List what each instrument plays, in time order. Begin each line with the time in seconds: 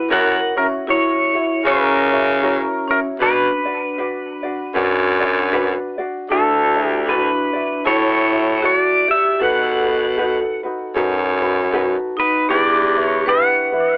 Already playing: pedal steel guitar B4
0.10 baritone saxophone F#2, ukulele E4 F#4 A#4 C#5, vibraphone A#4, pedal steel guitar F#5
0.56 vibraphone C#4, ukulele E4 F#4 C#5, pedal steel guitar A#4
0.87 vibraphone E4, ukulele E4 F#4 A#4 C#5, pedal steel guitar C#5
1.33 ukulele E4 F#4 C#5
1.64 baritone saxophone C#3, vibraphone C#4, ukulele E4 F#4 A#4 C#5, pedal steel guitar A#4
2.11 ukulele E4 F#4 C#5
2.43 ukulele E4 F#4 A#4 C#5
2.88 vibraphone C#4, ukulele E4 F#4 C#5, pedal steel guitar A#4
3.20 baritone saxophone B2, ukulele D4 F#4 B4 D5, vibraphone D4, pedal steel guitar B4
3.65 ukulele D4 F#4 D5
3.98 ukulele D4 F#4 B4 D5
4.43 ukulele D4 F#4 D5
4.74 baritone saxophone F#2, ukulele D4 F#4 B4 D5
5.20 ukulele D4 F#4 D5
5.53 ukulele D4 F#4 B4 D5
5.98 ukulele D4 F#4 D5
6.29 baritone saxophone D2, vibraphone D4, ukulele E4 F#4 A4 D5, pedal steel guitar A4
6.77 ukulele E4 F#4 D5
6.90 pedal steel guitar G4
7.06 vibraphone D4, ukulele E4 F#4 A4 D5, pedal steel guitar B4
7.53 ukulele E4 F#4 D5
7.85 baritone saxophone A2, vibraphone E4, ukulele E4 F#4 A4, pedal steel guitar C#5
8.32 ukulele E4 F#4
8.62 ukulele E4 F#4 A4 D5, vibraphone F#4, pedal steel guitar C#5
8.77 pedal steel guitar D5
9.08 ukulele E4 D5, vibraphone G4, pedal steel guitar E5
9.39 baritone saxophone B2, ukulele D#4 F#4 A4 B4, vibraphone A4, pedal steel guitar F#5
9.86 ukulele D#4 F#4 B4
10.17 ukulele D#4 F#4 A4 B4
10.63 ukulele D#4 F#4 B4
10.95 baritone saxophone F#2, ukulele D#4 F#4 A4 B4
11.41 ukulele D#4 F#4 B4
11.73 ukulele D#4 F#4 A4 B4
12.17 vibraphone D#4, ukulele D#4 F#4 B4, pedal steel guitar B4
12.49 baritone saxophone E2, ukulele D4 E4 G4 B4, vibraphone G4, pedal steel guitar D5
12.95 ukulele D4 E4 B4
13.05 pedal steel guitar C#5
13.26 ukulele D4 E4 G4 B4, vibraphone B4, pedal steel guitar F#5
13.72 ukulele D4 E4 B4